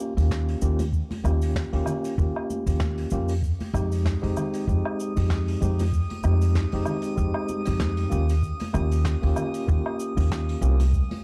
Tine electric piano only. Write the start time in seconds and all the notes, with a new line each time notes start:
Already playing: A#3 C#4 F4 G4
0.17 A#3 C#4 F4 G4
0.62 A#3 C#4 F4 G4
1.24 A#3 C#4 F4 G4
1.73 A#3 C#4 F4 G4
2.18 A#3 C#4 F4 G4
2.67 A#3 C#4 F4 G4
3.12 A#3 C#4 F4 G4
3.74 G#3 C4 D#4 G4
4.22 G#3 C4 D#4 G4
4.67 G#3 C4 D#4 G4
5.16 G#3 C4 D#4 G4
5.61 G#3 C4 D#4 G4
6.23 G#3 C4 D#4 G4
6.72 G#3 C4 D#4 G4
7.16 G#3 C4 D#4 G4
7.65 G#3 C4 D#4 G4
8.10 A#3 C#4 F4 G4
8.73 A#3 C#4 F4 G4
9.22 A#3 C#4 F4 G4
9.67 A#3 C#4 F4 G4
10.16 A#3 C#4 F4 G4
10.61 A#3 C#4 F4 G4